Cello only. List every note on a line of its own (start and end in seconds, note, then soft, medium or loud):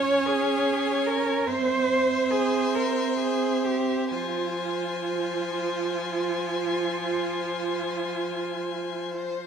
0.00 0.28 C#5 medium
0.27 1.08 G#4 medium
1.07 1.49 A#4 medium
1.48 2.32 C5 medium
2.31 2.77 G#4 medium
2.75 3.18 A#4 medium
3.19 3.66 G#4 medium
3.65 4.13 G4 medium
4.11 9.15 F4 medium